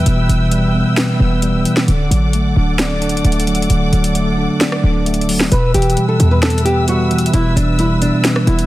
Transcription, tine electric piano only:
Already playing: B2 E3 G3 B3 B4
0.06 B2
0.30 E3
0.51 G3
0.74 B3
0.97 B4
1.21 B3
1.43 G3
1.65 E3
1.88 D3
2.12 F#3
2.35 A3
2.56 D4
2.79 D5
3.02 D4
3.25 A3
3.47 F#3
3.70 D3
3.92 F#3
4.15 A3
4.38 D4
4.61 D5
4.84 D4
5.06 A3
5.29 F#3
5.51 B2
5.75 E3
5.97 G3
6.19 B3
6.42 B4
6.66 B3
6.88 G3
7.11 E3
7.34 B2
7.57 E3
7.79 G3
8.01 B3
8.24 B4
8.48 B3

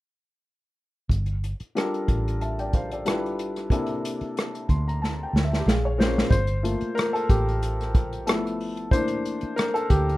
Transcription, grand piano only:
1.75 G3 D4 F4 A4 A#4
2.41 E5 A5
2.59 D5 G5
2.74 C5 F5
2.92 A4 D5
3.05 G3 D4 E4 F4 A4 B4
3.71 C3 A#3 D4 E4 A4
4.69 C6
4.88 A#5
5.02 A5
5.23 G5
5.45 E5
5.59 G4
5.66 G#4 F5
5.85 C#5
5.98 A#2 A#3 C#4 G#4 C5
6.30 C5
6.63 A3 A#3 F4
6.95 A#4
7.13 A4
7.29 G4
8.27 F3 A3 B3 E4 A4
8.91 E3 A3 A#3 D4 C5
9.56 A#4
9.74 A4
9.90 G4

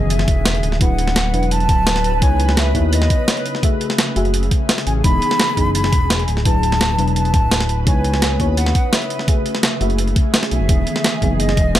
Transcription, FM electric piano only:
Already playing: D#3 E3 B3 D#4 G#4
0.80 F#3 D4 E4 B4
1.33 F#3 D4 E4 B4
2.21 B3 D#4 E4 C#5
2.74 B3 D#4 E4 C#5
3.62 A3 F#4 G#4 E5
4.15 A3 F#4 G#4 E5
5.03 E3 B3 D#4 G#4
5.56 E3 B3 D#4 G#4
6.44 F#3 D4 E4 B4
6.97 F#3 D4 E4 B4
7.86 B3 D#4 E4 C#5
8.39 B3 C#4 E4 C#5
9.27 A3 F#4 G#4 E5
9.80 A3 F#4 G#4 E5
10.68 D#3 E3 B3 G#4
11.21 E3 B3 D#4 G#4

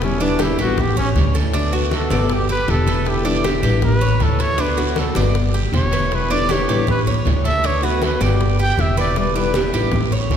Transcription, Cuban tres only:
Already playing: B4
0.20 D4
0.39 G4
0.59 G4
0.97 C#5
1.35 A4
1.54 D4
1.73 F#4
2.11 D5
2.49 G4
2.87 B4
3.25 D4
3.44 G4
3.63 G4
4.01 C#5
4.40 A4
4.58 D4
4.78 F#4
5.16 D5
5.54 G4
5.93 B4
6.30 D4
6.49 G4
6.69 G4
7.07 C#5
7.45 A4
7.64 D4
7.83 F#4
8.21 D5
8.59 G4
8.97 B4
9.36 D4
9.55 G4
9.74 G4
10.12 C#5

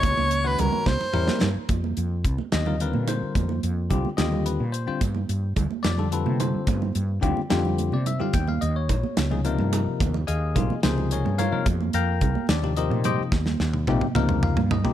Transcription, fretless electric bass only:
0.04 C#2
0.18 C#2
0.59 C#2
0.86 C2
1.01 muted fretless electric bass stroke
1.15 E2
1.29 muted fretless electric bass stroke
1.42 G2
1.56 muted fretless electric bass stroke
1.69 F2
1.97 F2
2.25 C2
2.39 muted fretless electric bass stroke
2.53 D#2
2.94 A#2
3.22 muted fretless electric bass stroke
3.35 F2
3.63 F2
3.91 C2
4.05 muted fretless electric bass stroke
4.18 D#2
4.60 A#2
4.88 muted fretless electric bass stroke
5.01 G2
5.29 G2
5.57 D2
5.71 muted fretless electric bass stroke
5.85 F2
6.26 C3
6.55 muted fretless electric bass stroke
6.67 G2
6.95 G2
7.23 D2
7.52 F2
7.93 C3
8.21 muted fretless electric bass stroke
8.34 D#2
8.62 D#2
8.89 A#1
9.04 muted fretless electric bass stroke
9.17 C#2
9.59 G2
9.87 muted fretless electric bass stroke
10.01 D#2
10.28 D#2
10.56 A#1
10.69 muted fretless electric bass stroke
10.84 C#2
11.25 G2
11.53 muted fretless electric bass stroke
11.66 F2
11.94 F2
12.22 C2
12.35 muted fretless electric bass stroke
12.49 D#2
12.90 A#2
13.19 muted fretless electric bass stroke
13.32 D#2
13.60 D#2
13.87 A#1
14.02 muted fretless electric bass stroke
14.15 C#2
14.57 G2
14.85 muted fretless electric bass stroke

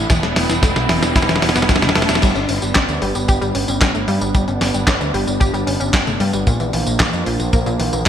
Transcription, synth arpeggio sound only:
0.10 E3
0.23 A3
0.36 A3
0.50 E3
0.63 A3
0.76 B2
0.89 E3
1.03 E3
1.16 E4
1.29 E3
1.42 F#3
1.56 B3
1.69 B2
1.82 D3
1.95 A3
2.09 E4
2.22 G3
2.35 C#4
2.49 C#4
2.62 G3
2.75 C#4
2.89 D3
3.02 G3
3.15 G3
3.28 G4
3.41 G3
3.55 C#4
3.68 C#4
3.81 C#4
3.95 A3
4.08 G3
4.21 G3
4.34 G3
4.48 C#4
4.61 C#4
4.74 G3
4.87 C#4
5.01 D3
5.14 G3
5.27 G3
5.40 G4
5.54 G3
5.67 C#4
5.80 C#4
5.93 C#4
6.07 A3
6.20 G3
6.33 G3
6.47 A#2
6.60 E3
6.73 E3
6.86 A#2
7.00 E3
7.13 F2
7.26 A#2
7.40 A#2
7.53 A#3
7.66 A#2
7.80 E3
7.93 E3

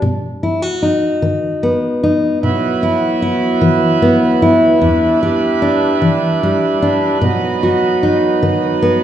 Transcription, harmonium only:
2.43 F#3 B3 E4 B4
4.82 G3 D4
7.22 F#3 B3 D#4

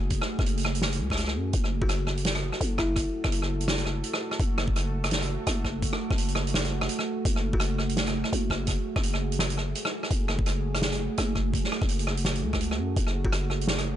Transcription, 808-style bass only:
Already playing: F#1
0.39 F#1
1.00 C#2
1.36 F#2
1.54 F#1
2.61 F#1
3.25 F#1
4.40 F#1
5.47 F#1
6.11 F#1
7.25 F#1
8.33 F#1
8.96 F#1
10.11 F#1
11.18 F#1
11.82 F#1
12.43 C#2
12.78 F#2
12.97 F#1

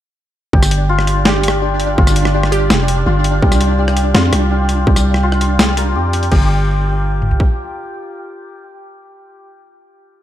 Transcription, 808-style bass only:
0.53 G1
1.98 G1
2.70 F1
3.06 G1
3.42 C2
4.14 F2
4.33 C2
4.87 C2
5.95 F2
6.32 G1

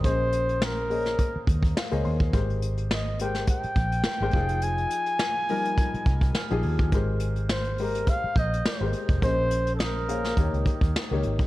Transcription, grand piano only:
0.05 A#3 C#4 G#4 C5 D#5
0.90 A#3 G#4 C5 C#5 D#5
1.77 F5
1.92 A#3 G#4 C5 C#5 D#5
2.05 C6
2.33 G#3 G4 A#4 C5
3.21 G#3 G4 A#4 C5
4.22 G#3 G4 A#4 C5
4.34 F3 D#4 F4 G#4
5.49 F3 G3 D#4 A#4
6.50 F3 D#4 G4 G#4
6.93 G#3 G4 A#4 C5
7.79 G#3 G4 A#4 C5
8.80 G#3 G4 A#4 C5
9.22 A#3 C#4 G#4 C5 D#5
10.08 A#3 G#4 C5 C#5 F5
10.38 D#3 A#3 G4 C#5
11.11 D#3 A#3 G4 C#5

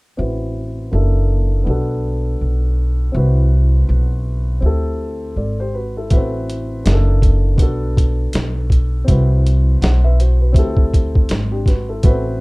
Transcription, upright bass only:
0.19 A1
0.93 F#1
1.67 B1
2.41 B1
3.15 C2
3.89 B1
4.62 D2
5.36 G#1
6.11 A1
6.86 F#1
7.58 B1
8.34 B1
9.08 C2
9.82 B1
10.54 D2
11.30 G#1
12.04 A1

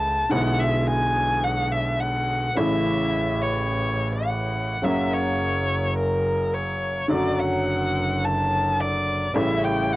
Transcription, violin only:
Already playing: A5
0.31 F#5
0.59 E5
0.87 G#5
1.44 F#5
1.72 E5
2.00 F#5
2.56 E5
3.42 C#5
4.27 F#5
4.84 E5
5.14 C#5
5.98 A#4
6.55 C#5
7.11 D5
7.40 F#5
8.25 A5
8.80 D5
9.37 E5
9.64 G5
9.93 F#5

